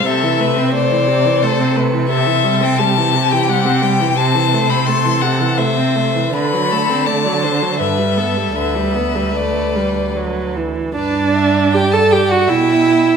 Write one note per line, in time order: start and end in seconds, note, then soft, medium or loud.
0.05 4.13 C3 soft
0.05 0.25 C3 soft
0.05 0.42 A4 soft
0.05 0.74 E5 medium
0.23 0.41 E3 soft
0.39 0.58 A3 soft
0.39 0.74 B4 soft
0.56 0.75 C4 soft
0.73 0.92 A3 soft
0.73 1.44 C5 soft
0.73 1.44 D5 medium
0.91 1.09 E3 soft
1.08 1.27 C3 soft
1.25 1.44 E3 soft
1.42 1.61 A3 soft
1.42 1.78 A4 soft
1.42 1.77 C5 soft
1.59 1.78 C4 soft
1.76 1.95 A3 soft
1.76 2.12 B4 soft
1.93 2.09 E3 soft
2.09 2.28 C3 soft
2.09 2.81 A4 soft
2.09 2.64 E5 medium
2.27 2.45 E3 soft
2.44 2.63 G3 soft
2.61 2.80 C4 soft
2.61 2.80 G5 medium
2.78 2.99 G3 soft
2.78 4.16 G4 soft
2.78 3.33 A5 medium
2.97 3.16 E3 soft
3.14 3.34 C3 soft
3.32 3.50 E3 soft
3.32 3.51 G5 medium
3.49 3.67 G3 soft
3.49 3.84 F#5 medium
3.65 3.83 C4 soft
3.82 4.01 G3 soft
3.82 4.18 G5 medium
4.00 4.17 E3 soft
4.16 6.30 C3 soft
4.16 4.36 C3 soft
4.16 4.89 C5 soft
4.16 4.71 A5 medium
4.35 4.55 E3 soft
4.53 4.71 A3 soft
4.70 4.90 C4 soft
4.70 4.88 B5 medium
4.86 5.06 A3 soft
4.86 5.59 A4 soft
4.86 5.23 C6 medium
5.05 5.24 E3 soft
5.22 5.42 C3 soft
5.22 5.59 F#5 medium
5.40 5.60 E3 soft
5.58 5.79 A3 soft
5.58 6.33 C5 soft
5.58 6.35 E5 soft
5.77 5.97 C4 soft
5.96 6.16 A3 soft
6.15 6.33 E3 soft
6.33 7.81 D3 soft
6.33 6.55 D3 soft
6.33 6.72 B4 soft
6.33 7.08 B5 medium
6.53 6.73 F#3 soft
6.70 6.91 A3 soft
6.70 7.08 A4 soft
6.90 7.08 C4 soft
7.06 7.27 A3 soft
7.06 7.44 D5 soft
7.06 7.79 A5 soft
7.25 7.45 F#3 soft
7.42 7.63 D3 soft
7.42 7.81 C5 soft
7.62 7.80 F#3 soft
7.79 8.56 G2 soft
7.79 8.00 D3 soft
7.79 8.18 B4 soft
7.79 8.55 E5 medium
7.99 8.19 G3 soft
8.17 8.38 B3 soft
8.17 8.57 A4 soft
8.37 8.55 G3 soft
8.56 10.70 D2 soft
8.56 8.77 D3 soft
8.56 10.55 B4 soft
8.56 9.38 E5 soft
8.75 8.97 G3 soft
8.95 9.17 B3 soft
9.15 9.34 G3 soft
9.35 9.77 A3 soft
9.35 10.16 D5 soft
9.76 10.18 G3 soft
10.16 10.57 F#3 soft
10.56 10.95 E3 soft
10.95 12.49 G2 soft
10.95 11.75 D4 medium
10.95 11.31 B4 soft
10.95 11.69 D5 soft
11.35 11.75 E5 soft
11.73 11.95 G4 soft
11.73 12.50 D5 soft
11.73 11.93 G5 soft
11.92 12.13 A4 soft
11.92 12.12 A5 soft
12.11 12.33 G4 medium
12.11 12.30 G5 soft
12.29 12.51 F#4 soft
12.29 12.49 F#5 soft
12.47 13.17 B2 soft
12.47 13.17 E4 medium
12.47 13.17 E5 soft
12.47 13.17 G5 soft